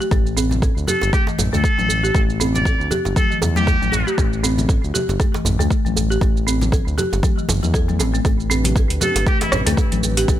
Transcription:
0.01 marimba G4, shaker
0.11 analog synth bass A1, marimba A3, kick, djembe tone, shaker
0.27 shaker
0.37 marimba C4, djembe tone, shaker
0.51 high conga, low conga, shaker
0.62 marimba A4, kick, djembe tone, shaker
0.77 analog synth bass D2, shaker
0.87 marimba G4, muted trumpet A4, high conga, djembe tone, low conga, shaker
1.01 analog synth bass G1, djembe slap, shaker
1.13 marimba A3, muted trumpet G4, kick, djembe tone, shaker
1.27 marimba E3, djembe slap, shaker
1.38 analog synth bass A1, high conga, djembe tone, low conga, djembe bass, shaker
1.53 analog synth bass D2, marimba A3, muted trumpet A4, djembe bass, shaker
1.64 kick, djembe tone, shaker
1.78 analog synth bass A1, marimba A3, high conga, shaker
1.89 djembe tone, shaker
2.04 marimba G4, shaker
2.15 analog synth bass A1, marimba A3, kick, djembe tone, shaker
2.30 shaker
2.40 marimba C4, djembe tone, shaker
2.55 muted trumpet D5, high conga, low conga, shaker
2.65 marimba A4, kick, djembe tone, shaker
2.80 analog synth bass D2, shaker
2.91 marimba G4, djembe tone, high conga, low conga, shaker
3.05 analog synth bass G1, djembe slap, shaker
3.16 marimba A3, muted trumpet A4, kick, high conga, djembe tone, shaker
3.31 marimba E3, shaker
3.42 analog synth bass E2, djembe slap, djembe tone, high conga, djembe bass, low conga, shaker
3.56 marimba A3, muted trumpet G4, high conga, shaker
3.67 kick, djembe tone, shaker
3.82 analog synth bass A1, marimba A3, high conga, shaker
3.92 analog synth bass A1, djembe slap, djembe tone, shaker
4.07 marimba G4, shaker
4.18 analog synth bass A1, marimba A3, kick, djembe tone, shaker
4.33 shaker
4.43 marimba C4, djembe tone, shaker
4.58 high conga, low conga, shaker
4.69 marimba A4, kick, djembe tone, shaker
4.84 analog synth bass D2, shaker
4.94 marimba G4, djembe tone, high conga, low conga, shaker
5.09 analog synth bass G1, djembe slap, shaker
5.20 marimba A3, kick, djembe tone, shaker
5.34 marimba E3, djembe slap, shaker
5.45 analog synth bass A1, djembe tone, high conga, djembe bass, low conga, shaker
5.59 analog synth bass D2, marimba A3, djembe bass, shaker
5.71 kick, djembe tone, shaker
5.85 analog synth bass A1, marimba A3, high conga, shaker
5.96 djembe tone, shaker
6.10 marimba G4, shaker
6.21 analog synth bass A1, marimba A3, kick, djembe tone, shaker
6.37 shaker
6.47 marimba C4, djembe tone, shaker
6.61 high conga, low conga, shaker
6.72 marimba A4, kick, djembe tone, shaker
6.87 analog synth bass D2, shaker
6.98 marimba G4, djembe tone, high conga, low conga, shaker
7.13 analog synth bass G1, djembe slap, shaker
7.23 marimba A3, kick, high conga, djembe tone, shaker
7.38 marimba E3, shaker
7.49 analog synth bass G1, djembe slap, high conga, djembe tone, low conga, djembe bass, shaker
7.63 analog synth bass E2, marimba E3, high conga, shaker
7.74 marimba A4, kick, djembe tone, shaker
7.88 marimba A3, high conga, shaker
7.99 analog synth bass A1, marimba C4, djembe slap, djembe tone, shaker
8.14 marimba A3, shaker
8.25 analog synth bass A1, marimba A3, analog synth pad A3 C4 D4 G4 B4, kick, djembe tone, shaker
8.40 shaker
8.50 marimba C4, djembe tone, shaker
8.64 closed hi-hat, high conga, low conga, shaker
8.76 marimba A4, kick, djembe tone, shaker
8.90 analog synth bass D2, closed hi-hat, shaker
9.01 marimba G4, muted trumpet A4, high conga, djembe tone, low conga, shaker
9.16 analog synth bass G1, closed hi-hat, djembe slap, shaker
9.26 marimba A3, muted trumpet G4, kick, djembe tone, shaker
9.41 marimba E3, muted trumpet E4, closed hi-hat, djembe slap, shaker
9.52 analog synth bass A1, cross-stick, djembe tone, high conga, djembe bass, low conga, shaker
9.66 analog synth bass D2, marimba A3, closed hi-hat, djembe bass, shaker
9.77 kick, djembe tone, shaker
9.92 analog synth bass A1, marimba A3, closed hi-hat, high conga, shaker
10.03 djembe tone, shaker
10.17 marimba G4, closed hi-hat, shaker
10.28 analog synth bass A1, marimba A3, kick, djembe tone, shaker

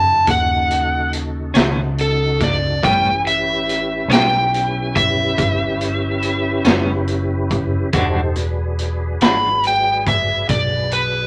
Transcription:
Already playing: fingered electric bass F#2, tonewheel organ C#3 D#4 F#4 A4, electric slide guitar A5
0.27 fingered electric bass D#2, electric slide guitar F#5, kick, closed hi-hat
0.71 closed hi-hat
1.13 closed hi-hat
1.54 fingered electric bass C#2, clean electric guitar B2 D#3 A3 C#4, snare, closed hi-hat
1.98 electric slide guitar A4, closed hi-hat
2.41 electric slide guitar D5, kick, snare, closed hi-hat
2.82 fingered electric bass A1, clean electric guitar A2 G3 B3 C#4, tonewheel organ C#4 E4 G4 B4, electric slide guitar G5, kick, closed hi-hat
3.27 electric slide guitar E5, closed hi-hat
3.69 closed hi-hat
4.08 fingered electric bass B1, clean electric guitar A2 G3 B3 C#4, closed hi-hat
4.13 electric slide guitar G5, snare
4.54 closed hi-hat
4.96 electric slide guitar E5, kick, closed hi-hat
5.38 fingered electric bass G1, kick, closed hi-hat
5.81 closed hi-hat
6.22 closed hi-hat
6.64 fingered electric bass F#1, clean electric guitar A2 G3 B3 C#4, snare, closed hi-hat
7.07 closed hi-hat
7.51 kick, closed hi-hat
7.93 fingered electric bass E1, clean electric guitar E3 G#3 D4 F#4, tonewheel organ D#4 G4 A4 C5, kick, closed hi-hat
8.36 tonewheel organ F#3 D4 G#4 B4, closed hi-hat
8.79 closed hi-hat
9.21 fingered electric bass G#1, clean electric guitar E3 G#3 D4 F#4, electric slide guitar B5, snare, closed hi-hat
9.63 electric slide guitar G5, closed hi-hat
10.07 electric slide guitar E5, kick, closed hi-hat
10.48 fingered electric bass B1, electric slide guitar D5, kick, closed hi-hat
10.91 electric slide guitar B4, closed hi-hat

